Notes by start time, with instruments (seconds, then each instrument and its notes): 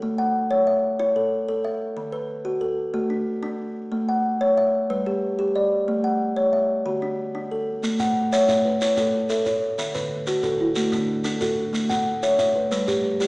Already playing: kalimba A4
0.02 kalimba A3
0.18 kalimba F#5
0.51 kalimba C#5
0.67 kalimba E5
0.99 kalimba E4 C#5
1.16 kalimba A4
1.48 kalimba A4
1.64 kalimba E5
1.97 kalimba D3
2.12 kalimba B4
2.45 kalimba F#4
2.61 kalimba A4
2.94 kalimba A3 F#4
3.10 kalimba D4
3.43 kalimba D4
3.92 kalimba A3
4.09 kalimba F#5
4.41 kalimba C#5
4.58 kalimba E5
4.90 kalimba G3 B4
5.06 kalimba G4
5.39 kalimba G4
5.56 kalimba D5
5.88 kalimba A3
6.04 kalimba F#5
6.36 kalimba C#5
6.53 kalimba E5
6.86 kalimba D3 F#4
7.02 kalimba D4
7.35 kalimba D4
7.51 kalimba A4
7.83 kalimba A3, shekere
7.99 kalimba A3 F#5, shekere
8.33 kalimba C#5 E5, shekere
8.48 kalimba A3 E5, shekere
8.65 kalimba B4
8.81 kalimba E4 C#5, shekere
8.97 kalimba A3 A4, shekere
9.29 kalimba A4 E5, shekere
9.46 kalimba C#5, shekere
9.78 kalimba D3 E5, shekere
9.95 kalimba D3 B4, shekere
10.27 kalimba F#4 A4, shekere
10.43 kalimba D3 A4, shekere
10.60 kalimba E4
10.76 kalimba A3 F#4, shekere
10.92 kalimba D3 D4, shekere
11.24 kalimba D4 A4, shekere
11.41 kalimba F#4 A4, shekere
11.73 kalimba A3, shekere
11.89 kalimba A3 F#5, shekere
12.23 kalimba C#5 E5, shekere
12.39 kalimba A3 E5, shekere
12.56 kalimba B4
12.71 kalimba G3 B4, shekere
12.88 kalimba G3 G4, shekere
13.20 kalimba G4 D5, shekere